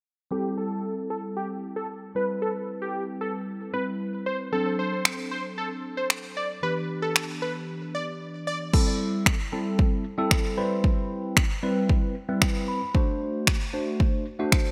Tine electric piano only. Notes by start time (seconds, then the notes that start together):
0.31 G3 C4 E4 A4
2.15 G3 C4 E4 B4
3.73 G3 C4 E4 B4
4.52 F#3 C4 D4 A4
6.62 E3 B3 D4 G4
8.73 G3 C4 E4 A4
9.52 G3 C4 E4 A4
10.18 G3 C4 E4 A4
10.57 G3 C4 E4 B4
11.63 G3 C4 E4 B4
12.28 G3 C4 E4 B4
12.42 G5
12.68 B5
12.94 A3 D4 F#4 C5
13.73 A3 D4 F#4 C5
14.39 A3 D4 F#4 C5